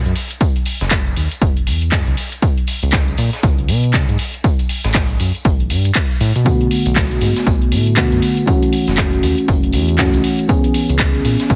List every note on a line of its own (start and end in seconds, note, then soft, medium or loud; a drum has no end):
0.05 0.13 F#2 loud
0.05 closed hi-hat medium
0.05 tambourine soft
0.16 closed hi-hat medium
0.16 open hi-hat loud
0.16 tambourine medium
0.31 closed hi-hat medium
0.31 tambourine soft
0.40 kick loud
0.40 closed hi-hat medium
0.40 tambourine medium
0.56 closed hi-hat medium
0.56 closed hi-hat soft
0.66 closed hi-hat medium
0.66 open hi-hat loud
0.66 tambourine loud
0.81 1.13 F#1 loud
0.81 snare medium
0.81 closed hi-hat medium
0.81 tambourine soft
0.91 kick loud
0.91 snare loud
0.91 clap loud
0.91 closed hi-hat medium
0.91 tambourine medium
1.06 closed hi-hat soft
1.06 tambourine soft
1.16 1.28 D#2 medium
1.16 closed hi-hat medium
1.16 open hi-hat loud
1.16 tambourine medium
1.31 closed hi-hat medium
1.31 tambourine soft
1.41 1.68 F#1 medium
1.41 kick loud
1.41 closed hi-hat medium
1.41 tambourine medium
1.57 closed hi-hat soft
1.67 1.93 E2 medium
1.67 closed hi-hat medium
1.67 open hi-hat loud
1.67 tambourine medium
1.81 closed hi-hat medium
1.81 tambourine soft
1.92 2.04 F#2 medium
1.92 kick loud
1.92 snare loud
1.92 clap loud
1.92 closed hi-hat medium
1.92 tambourine medium
2.07 2.15 C#2 loud
2.07 closed hi-hat soft
2.07 closed hi-hat medium
2.07 tambourine soft
2.17 closed hi-hat medium
2.17 open hi-hat loud
2.17 tambourine medium
2.31 closed hi-hat medium
2.31 tambourine soft
2.42 kick loud
2.42 closed hi-hat medium
2.42 tambourine medium
2.58 closed hi-hat soft
2.67 open hi-hat loud
2.67 open hi-hat medium
2.67 tambourine loud
2.83 3.15 C#2 loud
2.83 closed hi-hat medium
2.83 closed hi-hat soft
2.83 tambourine soft
2.93 kick loud
2.93 snare loud
2.93 clap loud
2.93 closed hi-hat medium
2.93 tambourine medium
3.08 closed hi-hat soft
3.08 tambourine soft
3.17 3.30 A#2 medium
3.17 closed hi-hat medium
3.17 open hi-hat loud
3.17 tambourine medium
3.32 snare soft
3.32 closed hi-hat medium
3.32 tambourine soft
3.43 3.70 C#2 medium
3.43 kick loud
3.43 closed hi-hat medium
3.43 tambourine medium
3.58 closed hi-hat soft
3.68 3.95 B2 medium
3.68 closed hi-hat medium
3.68 open hi-hat loud
3.68 tambourine loud
3.84 closed hi-hat medium
3.84 tambourine soft
3.94 4.06 C#3 medium
3.94 kick loud
3.94 snare loud
3.94 clap loud
3.94 closed hi-hat medium
3.94 tambourine medium
4.09 4.17 G#2 medium
4.09 closed hi-hat medium
4.09 tambourine soft
4.18 closed hi-hat medium
4.18 open hi-hat loud
4.18 tambourine medium
4.34 closed hi-hat medium
4.34 tambourine soft
4.44 kick loud
4.44 closed hi-hat medium
4.44 tambourine medium
4.59 closed hi-hat soft
4.59 tambourine soft
4.69 closed hi-hat medium
4.69 open hi-hat loud
4.69 tambourine medium
4.84 5.16 A1 loud
4.84 snare medium
4.84 closed hi-hat medium
4.84 tambourine soft
4.94 kick loud
4.94 snare loud
4.94 clap loud
4.94 closed hi-hat medium
4.94 tambourine medium
5.10 closed hi-hat soft
5.10 tambourine soft
5.20 5.32 F#2 medium
5.20 closed hi-hat medium
5.20 open hi-hat loud
5.20 tambourine medium
5.35 closed hi-hat medium
5.35 tambourine soft
5.45 5.72 A1 medium
5.45 kick loud
5.45 closed hi-hat medium
5.45 tambourine soft
5.60 closed hi-hat soft
5.70 5.91 G2 medium
5.70 closed hi-hat medium
5.70 open hi-hat loud
5.70 tambourine medium
5.85 closed hi-hat medium
5.85 tambourine soft
5.95 kick loud
5.95 clap loud
5.95 closed hi-hat medium
5.95 tambourine medium
6.10 closed hi-hat medium
6.10 tambourine soft
6.21 6.32 A2 loud
6.21 open hi-hat loud
6.21 open hi-hat medium
6.21 tambourine loud
6.36 6.68 B2 medium
6.36 closed hi-hat medium
6.36 tambourine soft
6.45 7.94 D3 medium
6.45 7.94 A3 medium
6.45 7.95 B3 medium
6.45 7.95 F#4 medium
6.45 kick loud
6.45 closed hi-hat medium
6.45 tambourine soft
6.61 closed hi-hat soft
6.71 open hi-hat loud
6.71 open hi-hat medium
6.71 tambourine medium
6.86 7.18 B1 loud
6.86 closed hi-hat medium
6.86 closed hi-hat soft
6.86 tambourine soft
6.96 kick loud
6.96 snare loud
6.96 clap loud
6.96 closed hi-hat medium
6.96 tambourine soft
7.11 closed hi-hat soft
7.11 tambourine soft
7.21 7.33 G#2 medium
7.21 closed hi-hat medium
7.21 open hi-hat loud
7.21 tambourine medium
7.36 snare soft
7.36 closed hi-hat medium
7.36 tambourine soft
7.47 7.73 B1 medium
7.47 kick loud
7.47 closed hi-hat medium
7.47 tambourine medium
7.62 closed hi-hat soft
7.72 7.98 A2 loud
7.72 closed hi-hat medium
7.72 open hi-hat loud
7.72 tambourine medium
7.87 closed hi-hat medium
7.87 tambourine soft
7.96 8.09 B2 medium
7.96 8.45 D3 medium
7.96 8.45 A3 medium
7.96 8.45 B3 medium
7.96 8.45 F#4 medium
7.96 kick loud
7.96 snare loud
7.96 clap loud
7.96 closed hi-hat medium
7.96 tambourine medium
8.12 8.20 F#2 loud
8.12 closed hi-hat medium
8.12 tambourine soft
8.22 closed hi-hat medium
8.22 open hi-hat loud
8.22 tambourine medium
8.37 closed hi-hat medium
8.37 tambourine soft
8.46 9.96 E3 medium
8.46 9.96 A3 medium
8.46 9.96 C#4 medium
8.46 9.97 F#4 medium
8.46 kick loud
8.46 closed hi-hat medium
8.46 tambourine medium
8.63 closed hi-hat soft
8.73 closed hi-hat medium
8.73 open hi-hat loud
8.73 tambourine medium
8.87 9.20 F#1 loud
8.87 snare medium
8.87 closed hi-hat medium
8.87 tambourine soft
8.98 kick loud
8.98 snare loud
8.98 clap loud
8.98 closed hi-hat medium
8.98 tambourine medium
9.13 closed hi-hat soft
9.13 tambourine soft
9.23 9.35 D#2 medium
9.23 closed hi-hat medium
9.23 open hi-hat loud
9.23 tambourine medium
9.38 closed hi-hat medium
9.38 tambourine soft
9.48 9.75 F#1 medium
9.48 kick loud
9.48 closed hi-hat medium
9.48 tambourine soft
9.63 closed hi-hat soft
9.73 10.00 E2 loud
9.73 closed hi-hat medium
9.73 open hi-hat loud
9.73 tambourine medium
9.88 closed hi-hat medium
9.88 tambourine soft
9.98 10.11 F#2 medium
9.98 10.46 E3 medium
9.98 10.47 A3 medium
9.98 10.47 C#4 medium
9.98 10.47 F#4 medium
9.98 kick loud
9.98 snare loud
9.98 clap loud
9.98 closed hi-hat medium
9.98 tambourine medium
10.14 10.22 C#2 loud
10.14 closed hi-hat medium
10.14 closed hi-hat soft
10.14 tambourine soft
10.24 closed hi-hat medium
10.24 open hi-hat loud
10.24 tambourine medium
10.39 closed hi-hat medium
10.39 tambourine soft
10.48 11.56 E3 medium
10.48 11.56 B3 medium
10.48 11.56 C#4 medium
10.48 11.56 G#4 medium
10.48 kick loud
10.48 closed hi-hat medium
10.48 tambourine soft
10.48 riser medium
10.64 closed hi-hat medium
10.74 open hi-hat medium
10.74 open hi-hat loud
10.74 tambourine medium
10.89 11.21 C#2 loud
10.89 closed hi-hat soft
10.89 closed hi-hat medium
10.89 tambourine soft
10.99 kick loud
10.99 snare loud
10.99 clap loud
10.99 closed hi-hat medium
10.99 tambourine soft
11.15 closed hi-hat soft
11.15 tambourine soft
11.25 11.37 A#2 medium
11.25 closed hi-hat medium
11.25 open hi-hat loud
11.25 tambourine medium
11.40 snare soft
11.40 closed hi-hat medium
11.40 tambourine soft
11.50 11.56 C#2 medium
11.50 kick loud
11.50 closed hi-hat medium
11.50 tambourine soft